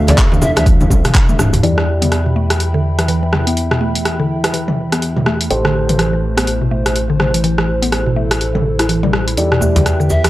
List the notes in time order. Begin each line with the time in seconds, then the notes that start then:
Already playing: D2 D4 A4 E5 F5
0.08 D5, closed hi-hat, mid tom, djembe slap, high conga, djembe bass, cabasa
0.17 kick, cross-stick, clap, closed hi-hat, cabasa
0.32 D2 D3, djembe slap, high conga, cabasa
0.42 E5, djembe tone, high conga, low conga, cabasa
0.56 D2 E3 E5, cross-stick, closed hi-hat, djembe slap, cabasa
0.66 E3, kick, closed hi-hat, high tom, cabasa
0.80 E3, mid tom, high tom, low conga, cabasa
0.90 C2, kick, high tom, djembe tone, high conga, low conga, cabasa
1.04 B2, cross-stick, closed hi-hat, mid tom, cabasa
1.14 kick, clap, closed hi-hat, mid tom, cabasa
1.29 A3, mid tom, cabasa
1.39 D1 D4, cross-stick, mid tom, high conga, cabasa
1.53 closed hi-hat, mid tom, djembe tone, cabasa
1.63 E2 E3 G3 E4 D5 E5 G5 B5, closed hi-hat
1.78 E3, cross-stick
2.02 B3, closed hi-hat, mid tom
2.12 cross-stick, closed hi-hat
2.26 B2
2.36 A3
2.50 cross-stick, closed hi-hat
2.60 closed hi-hat
2.74 D3
2.98 E3, cross-stick, closed hi-hat
3.08 E3, closed hi-hat
3.23 E3
3.33 cross-stick, mid tom
3.47 B3, closed hi-hat
3.57 closed hi-hat
3.71 B2, cross-stick
3.81 A3
3.95 closed hi-hat
4.05 cross-stick, closed hi-hat
4.20 D3
4.44 E3, cross-stick, closed hi-hat
4.53 E3, closed hi-hat
4.68 E3, mid tom
4.92 B3, cross-stick, closed hi-hat
5.02 closed hi-hat
5.16 B2, mid tom
5.26 A3, cross-stick
5.41 closed hi-hat
5.50 A1 A3 E4 G4 C5, closed hi-hat
5.65 D3, cross-stick
5.89 E3, closed hi-hat, mid tom
5.99 E3, cross-stick, closed hi-hat
6.13 E3
6.37 B3, cross-stick, closed hi-hat
6.47 closed hi-hat
6.62 B2
6.71 A3
6.86 cross-stick, closed hi-hat
6.96 closed hi-hat
7.10 D3
7.20 cross-stick, mid tom
7.34 E3, closed hi-hat
7.44 E3 A4, closed hi-hat
7.58 E3, cross-stick
7.82 B3, closed hi-hat
7.92 cross-stick, closed hi-hat
8.06 B2
8.16 A3
8.31 cross-stick, closed hi-hat
8.41 closed hi-hat
8.55 D3, mid tom
8.79 E4, cross-stick, closed hi-hat
8.89 E3, closed hi-hat
9.03 G3, mid tom
9.13 cross-stick
9.27 E4, closed hi-hat
9.37 E2 G3 E4 B4 D5 E5 G5, closed hi-hat, cabasa
9.52 B2, cross-stick
9.61 A3, djembe tone, cabasa
9.76 closed hi-hat, mid tom, djembe slap, djembe bass, cabasa
9.86 cross-stick, closed hi-hat, cabasa
10.00 D3, cabasa
10.10 E5, djembe tone, cabasa
10.24 E3, cross-stick, closed hi-hat, djembe slap, cabasa